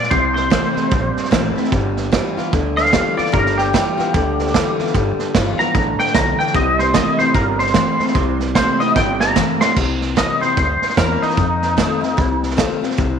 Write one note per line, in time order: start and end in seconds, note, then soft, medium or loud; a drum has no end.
0.00 0.10 D5 loud
0.00 snare soft
0.11 0.57 C2 loud
0.11 0.48 C3 medium
0.11 0.89 C3 loud
0.11 0.49 G3 medium
0.11 0.33 C5 loud
0.11 kick loud
0.11 snare soft
0.34 1.52 C5 loud
0.34 snare soft
0.50 0.74 C3 medium
0.50 0.75 E3 medium
0.50 0.74 A3 medium
0.50 0.75 A#3 loud
0.50 0.75 C4 loud
0.50 0.73 E4 loud
0.50 kick medium
0.50 snare loud
0.50 hi-hat pedal medium
0.74 0.90 C3 medium
0.74 0.90 A3 medium
0.74 0.91 C4 medium
0.74 0.90 E4 medium
0.74 muted upright bass stroke medium
0.74 snare soft
0.91 1.13 A#1 medium
0.91 1.69 G2 medium
0.91 1.29 C3 medium
0.91 1.29 G3 loud
0.91 kick loud
0.91 snare soft
1.16 muted upright bass stroke medium
1.16 snare soft
1.25 snare soft
1.31 1.53 A1 medium
1.31 1.55 C3 medium
1.31 1.55 E3 loud
1.31 1.55 A3 loud
1.31 1.56 A#3 medium
1.31 1.56 C4 loud
1.31 1.55 E4 loud
1.31 kick medium
1.31 snare loud
1.31 hi-hat pedal medium
1.56 1.71 C3 medium
1.56 1.71 A3 medium
1.56 1.72 C4 medium
1.56 1.71 E4 medium
1.56 muted upright bass stroke medium
1.56 snare soft
1.64 snare soft
1.72 2.18 G1 loud
1.72 2.10 G2 medium
1.72 2.10 D3 medium
1.72 2.10 G3 loud
1.72 kick loud
1.72 snare soft
1.97 snare soft
2.12 2.35 G2 medium
2.12 2.35 E3 loud
2.12 2.36 G3 medium
2.12 2.37 B3 medium
2.12 2.36 F4 loud
2.12 kick medium
2.12 snare loud
2.12 hi-hat pedal medium
2.37 2.51 G2 medium
2.37 2.51 E3 medium
2.37 2.53 B3 medium
2.37 2.52 F4 medium
2.37 muted upright bass stroke medium
2.37 snare soft
2.53 2.98 D2 medium
2.53 2.90 G2 medium
2.53 3.30 D3 loud
2.53 2.90 D3 loud
2.53 kick loud
2.53 snare soft
2.77 3.16 F5 loud
2.77 snare soft
2.85 snare soft
2.93 3.15 G2 medium
2.93 3.16 E3 loud
2.93 3.17 G3 loud
2.93 3.17 B3 medium
2.93 3.16 F4 loud
2.93 kick medium
2.93 snare loud
2.93 hi-hat pedal medium
3.17 3.32 G2 medium
3.17 3.32 E3 medium
3.17 3.33 B3 medium
3.17 3.32 F4 medium
3.17 3.33 D5 medium
3.17 muted upright bass stroke medium
3.17 snare soft
3.26 snare soft
3.32 3.79 G1 loud
3.32 3.70 G2 medium
3.32 3.71 D3 medium
3.32 3.72 G3 loud
3.32 3.57 A#4 loud
3.32 kick loud
3.32 snare soft
3.46 snare soft
3.58 4.75 G4 loud
3.58 snare soft
3.73 3.96 G2 medium
3.73 3.96 E3 loud
3.73 3.97 G3 medium
3.73 3.98 B3 medium
3.73 3.96 F4 medium
3.73 kick loud
3.73 snare loud
3.73 hi-hat pedal medium
3.98 4.12 G2 medium
3.98 4.13 E3 medium
3.98 4.14 B3 soft
3.98 4.13 F4 medium
3.98 muted upright bass stroke medium
3.98 snare soft
4.14 4.59 D2 medium
4.14 4.51 G2 medium
4.14 4.91 D3 loud
4.14 4.51 D3 loud
4.14 kick loud
4.14 snare soft
4.39 snare soft
4.47 snare soft
4.54 4.76 G2 loud
4.54 4.77 E3 loud
4.54 4.78 G3 medium
4.54 4.79 B3 loud
4.54 4.78 F4 loud
4.54 kick medium
4.54 snare loud
4.54 hi-hat pedal medium
4.78 4.93 G2 medium
4.78 4.93 E3 medium
4.78 4.95 B3 medium
4.78 4.94 F4 medium
4.78 muted upright bass stroke medium
4.78 snare soft
4.87 snare soft
4.94 5.12 G1 medium
4.94 5.31 G2 medium
4.94 5.31 D3 medium
4.94 5.34 G3 loud
4.94 kick loud
4.94 snare soft
5.19 muted upright bass stroke medium
5.19 snare soft
5.34 5.55 G1 loud
5.34 5.57 G2 medium
5.34 5.57 E3 loud
5.34 5.58 G3 loud
5.34 5.59 B3 loud
5.34 5.58 F4 loud
5.34 kick medium
5.34 snare loud
5.34 hi-hat pedal medium
5.59 5.73 G2 medium
5.59 5.74 E3 medium
5.59 5.75 B3 medium
5.59 5.74 F4 medium
5.59 5.98 A#5 loud
5.59 muted upright bass stroke medium
5.59 snare soft
5.75 5.96 A1 medium
5.75 6.12 G2 medium
5.75 6.13 A2 loud
5.75 6.12 D3 loud
5.75 kick loud
5.75 snare soft
5.99 6.14 G5 loud
5.99 muted upright bass stroke medium
5.99 snare soft
6.07 snare soft
6.14 6.36 B1 medium
6.14 6.37 G2 medium
6.14 6.53 D3 medium
6.14 6.37 E3 loud
6.14 6.38 A#5 loud
6.14 kick medium
6.14 snare loud
6.14 hi-hat pedal loud
6.39 6.53 G2 medium
6.39 6.54 E3 medium
6.39 6.54 G5 medium
6.39 muted upright bass stroke medium
6.39 snare soft
6.47 snare soft
6.54 7.00 C2 loud
6.54 7.32 C3 loud
6.54 6.92 C3 medium
6.54 6.92 G3 loud
6.54 6.79 D#5 loud
6.54 kick loud
6.54 snare soft
6.79 6.94 C5 medium
6.79 snare soft
6.94 7.17 C3 medium
6.94 7.18 E3 medium
6.94 7.18 A3 loud
6.94 7.19 A#3 loud
6.94 7.19 C4 medium
6.94 7.18 E4 medium
6.94 7.19 D#5 medium
6.94 kick medium
6.94 snare loud
6.94 hi-hat pedal medium
7.19 7.34 C3 medium
7.19 7.34 A3 medium
7.19 7.35 C4 medium
7.19 7.34 E4 medium
7.19 7.34 C5 loud
7.19 muted upright bass stroke medium
7.19 snare soft
7.34 7.80 G1 medium
7.34 8.12 G2 medium
7.34 7.72 C3 medium
7.34 7.72 G3 loud
7.34 7.59 A#4 loud
7.34 kick loud
7.34 snare soft
7.59 8.37 C5 loud
7.59 snare soft
7.67 snare soft
7.74 7.97 C3 medium
7.74 7.98 E3 medium
7.74 7.98 A3 loud
7.74 7.99 A#3 medium
7.74 7.99 C4 loud
7.74 7.98 E4 loud
7.74 kick medium
7.74 snare loud
7.74 hi-hat pedal medium
7.99 8.14 C3 medium
7.99 8.14 A3 medium
7.99 8.16 C4 medium
7.99 8.15 E4 medium
7.99 muted upright bass stroke medium
7.99 snare soft
8.07 snare soft
8.15 8.61 C2 loud
8.15 8.52 C3 medium
8.15 8.93 C3 loud
8.15 8.52 G3 medium
8.15 kick loud
8.15 snare soft
8.40 snare soft
8.55 8.78 C3 loud
8.55 8.79 E3 medium
8.55 8.78 A3 medium
8.55 8.80 A#3 loud
8.55 8.80 C4 loud
8.55 8.79 E4 loud
8.55 8.80 C5 medium
8.55 kick medium
8.55 snare loud
8.55 hi-hat pedal medium
8.80 8.94 C3 medium
8.80 8.94 A3 medium
8.80 8.96 C4 medium
8.80 8.95 E4 medium
8.80 8.95 D#5 loud
8.80 muted upright bass stroke medium
8.80 snare soft
8.96 9.41 G1 medium
8.96 9.73 G2 loud
8.96 9.33 C3 medium
8.96 9.33 G3 loud
8.96 9.20 G5 medium
8.96 kick loud
8.96 snare medium
9.20 9.60 A#5 loud
9.20 snare medium
9.36 9.58 C3 medium
9.36 9.60 E3 loud
9.36 9.59 A3 loud
9.36 9.60 A#3 loud
9.36 9.60 C4 loud
9.36 9.60 E4 loud
9.36 kick medium
9.36 snare medium
9.36 hi-hat pedal medium
9.60 9.75 C3 medium
9.60 9.75 A3 medium
9.60 9.77 C4 medium
9.60 9.76 E4 medium
9.60 9.76 C6 loud
9.60 muted upright bass stroke medium
9.60 snare loud
9.76 10.22 C2 medium
9.76 10.54 C3 loud
9.76 kick loud
9.76 snare soft
9.76 crash medium
10.01 snare soft
10.16 10.40 E3 medium
10.16 10.40 A#3 medium
10.16 10.41 C4 medium
10.16 10.40 E4 loud
10.16 10.41 D#5 medium
10.16 kick medium
10.16 snare loud
10.16 hi-hat pedal medium
10.41 10.57 C4 medium
10.41 10.56 E4 medium
10.41 10.95 C5 medium
10.41 muted upright bass stroke medium
10.41 snare soft
10.57 10.78 D2 medium
10.57 11.34 G2 loud
10.57 kick loud
10.57 snare soft
10.81 muted upright bass stroke medium
10.81 snare soft
10.89 snare soft
10.97 11.18 E2 medium
10.97 11.36 E3 medium
10.97 11.36 A#3 loud
10.97 11.36 C4 loud
10.97 11.37 E4 loud
10.97 11.21 A#4 medium
10.97 kick medium
10.97 snare loud
10.97 hi-hat pedal medium
11.22 12.39 D#4 loud
11.22 muted upright bass stroke medium
11.22 snare soft
11.30 snare soft
11.37 12.14 F2 medium
11.37 11.83 F2 medium
11.37 kick loud
11.37 snare soft
11.62 snare soft
11.77 12.01 D#3 medium
11.77 12.01 A3 loud
11.77 12.01 C4 loud
11.77 11.99 F4 medium
11.77 kick medium
11.77 snare loud
11.77 hi-hat pedal medium
12.01 12.17 C4 medium
12.01 12.16 F4 medium
12.01 muted upright bass stroke medium
12.01 snare soft
12.17 12.63 C2 medium
12.17 12.95 C3 medium
12.17 kick loud
12.17 snare soft
12.43 snare soft
12.50 snare soft
12.57 12.81 D#3 medium
12.57 12.81 A3 loud
12.57 12.82 C4 loud
12.57 12.80 F4 loud
12.57 kick medium
12.57 snare loud
12.57 hi-hat pedal medium
12.81 12.98 C4 soft
12.81 12.97 F4 medium
12.81 muted upright bass stroke medium
12.81 snare soft
12.91 snare soft
12.98 13.19 C2 medium
12.98 13.19 C3 loud
12.98 kick loud
12.98 snare soft